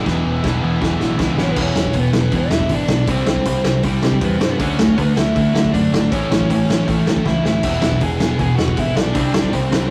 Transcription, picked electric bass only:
0.06 0.21 E1 loud
0.25 0.40 E1 medium
0.44 0.59 E1 loud
0.63 0.77 E1 medium
0.81 0.96 E1 loud
1.01 1.16 A1 medium
1.20 1.34 C#2 medium
1.38 1.53 G#1 medium
1.57 1.71 E1 medium
1.75 1.90 E1 medium
1.94 2.09 E1 loud
2.15 2.28 E1 medium
2.32 2.46 E1 loud
2.51 2.66 E2 medium
2.70 2.84 G#1 medium
2.88 3.03 B1 medium
3.08 3.22 C2 loud
3.26 3.41 C2 medium
3.46 3.60 C2 loud
3.65 3.79 C2 medium
3.84 3.98 C2 loud
4.03 4.17 C3 medium
4.21 4.36 E2 medium
4.41 4.55 G2 medium
4.60 4.74 D2 medium
4.79 4.93 D2 medium
4.98 5.12 D2 loud
5.18 5.32 D2 medium
5.36 5.50 D2 loud
5.55 5.69 D3 medium
5.74 5.88 F#2 medium
5.94 6.07 G#1 medium
6.12 6.26 A1 medium
6.30 6.44 A1 medium
6.50 6.64 A1 loud
6.69 6.83 A1 medium
6.88 7.02 A1 loud
7.08 7.21 A2 medium
7.26 7.40 C#2 medium
7.45 7.59 D2 medium
7.64 7.78 E1 medium
7.83 7.97 E1 medium
8.02 8.16 E1 loud
8.20 8.34 E1 medium
8.40 8.54 E1 loud
8.59 8.73 E2 medium
8.78 8.92 G#1 medium
8.96 9.11 B1 medium
9.15 9.29 C2 medium
9.33 9.48 C2 medium
9.53 9.68 C2 loud
9.71 9.86 C2 medium

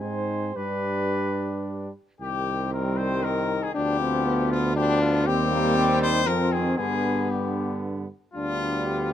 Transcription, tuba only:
0.01 0.56 G#2 medium
0.56 1.91 G2 medium
2.20 3.72 C2 medium
3.77 5.29 D2 loud
5.28 6.29 D#2 loud
6.27 6.78 F2 medium
6.79 8.07 G2 medium
8.36 9.13 D2 medium

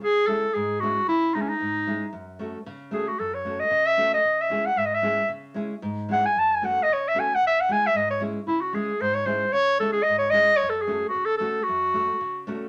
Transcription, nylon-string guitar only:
0.01 0.42 C#3 medium
0.27 0.46 G#3 soft
0.27 0.46 C#4 soft
0.27 0.47 E4 medium
0.27 0.47 G#4 medium
0.55 0.96 G#2 medium
0.82 1.00 G#3 medium
0.82 1.00 C#4 soft
0.82 1.00 E4 medium
0.82 1.00 G#4 medium
1.08 1.48 C#3 medium
1.35 1.53 G#3 medium
1.35 1.52 C#4 medium
1.35 1.53 E4 medium
1.35 1.53 G#4 medium
1.60 2.01 G#2 medium
1.87 2.05 G#3 medium
1.87 2.05 C#4 medium
1.87 2.05 E4 medium
1.87 2.06 G#4 medium
2.13 2.53 F#2 medium
2.39 2.57 A3 medium
2.39 2.58 C#4 medium
2.39 2.58 F#4 medium
2.39 2.58 A4 medium
2.66 3.07 C#3 medium
2.91 3.10 A3 medium
2.91 3.10 C#4 medium
2.91 3.11 F#4 medium
2.91 3.10 A4 medium
3.19 3.60 F#2 medium
3.45 3.63 A3 medium
3.45 3.63 C#4 medium
3.45 3.64 F#4 medium
3.45 3.64 A4 medium
3.71 4.11 C#3 medium
3.97 4.15 A3 medium
3.97 4.16 C#4 medium
3.97 4.16 F#4 medium
3.97 4.16 A4 medium
4.25 4.65 C#3 soft
4.50 4.68 G#3 medium
4.50 4.68 C#4 medium
4.50 4.69 E4 medium
4.50 4.69 G#4 medium
4.76 5.17 G#2 medium
5.02 5.21 G#3 medium
5.02 5.21 C#4 medium
5.02 5.21 E4 medium
5.02 5.22 G#4 medium
5.29 5.70 C#3 medium
5.54 5.73 G#3 medium
5.54 5.73 C#4 medium
5.54 5.74 E4 medium
5.54 5.74 G#4 medium
5.82 6.23 G#2 medium
6.09 6.27 G#3 medium
6.09 6.27 C#4 medium
6.09 6.27 E4 medium
6.09 6.28 G#4 medium
6.36 6.76 F#2 medium
6.62 6.80 A3 medium
6.62 6.80 C#4 medium
6.62 6.81 F#4 medium
6.62 6.81 A4 medium
6.89 7.29 C#3 medium
7.14 7.33 A3 medium
7.14 7.33 C#4 medium
7.14 7.33 F#4 medium
7.14 7.33 A4 medium
7.42 7.82 C#3 medium
7.69 7.86 G#3 medium
7.69 7.86 C#4 soft
7.69 7.87 E4 medium
7.69 7.87 G#4 medium
7.94 8.35 G#2 medium
8.20 8.38 G#3 medium
8.20 8.39 C#4 medium
8.20 8.39 E4 medium
8.20 8.39 G#4 medium
8.47 8.88 C#3 medium
8.73 8.91 G#3 medium
8.73 8.92 C#4 medium
8.73 8.92 E4 medium
8.73 8.93 G#4 medium
9.00 9.41 G#2 medium
9.25 9.44 G#3 medium
9.25 9.44 C#4 medium
9.25 9.45 E4 medium
9.25 9.45 G#4 medium
9.53 9.94 C#3 medium
9.79 9.98 G#3 medium
9.79 9.98 C#4 medium
9.79 9.99 E4 medium
9.79 9.99 G#4 medium
10.08 10.48 G#2 medium
10.32 10.51 G#3 medium
10.32 10.51 C#4 medium
10.32 10.52 E4 medium
10.32 10.52 G#4 medium
10.62 11.02 F#2 medium
10.87 11.05 A3 medium
10.87 11.05 C#4 medium
10.87 11.06 F#4 medium
10.87 11.06 A4 medium
11.14 11.55 C#3 medium
11.40 11.58 A3 medium
11.40 11.59 C#4 medium
11.40 11.59 F#4 medium
11.40 11.59 A4 medium
11.68 12.09 F#2 medium
11.94 12.12 A3 medium
11.94 12.12 C#4 soft
11.94 12.13 F#4 medium
11.94 12.13 A4 medium
12.21 12.62 C#3 medium
12.47 12.65 A3 medium
12.47 12.66 C#4 medium
12.47 12.66 F#4 medium
12.47 12.66 A4 medium

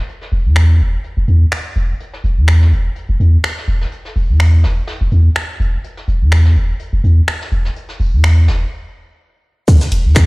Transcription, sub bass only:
0.32 0.47 E1 loud
0.45 0.82 E2 loud
0.80 0.98 E1 medium
1.17 1.25 E1 loud
1.28 1.46 E2 medium
1.76 1.94 E1 medium
2.24 2.39 E1 loud
2.37 2.73 E2 loud
2.72 2.90 E1 medium
3.09 3.17 E1 loud
3.20 3.38 E2 medium
3.68 3.85 E1 medium
4.16 4.31 E1 loud
4.29 4.65 E2 medium
4.64 4.82 E1 medium
5.01 5.09 E1 loud
5.12 5.30 E2 medium
5.60 5.78 E1 medium
6.08 6.23 E1 loud
6.21 6.57 E2 loud
6.56 6.74 E1 medium
6.93 7.01 E1 loud
7.04 7.22 E2 medium
7.52 7.70 E1 medium
8.00 8.14 E1 loud
8.13 8.49 E2 loud
8.48 8.66 E1 medium
9.92 10.06 E1 loud
10.05 10.26 E2 loud

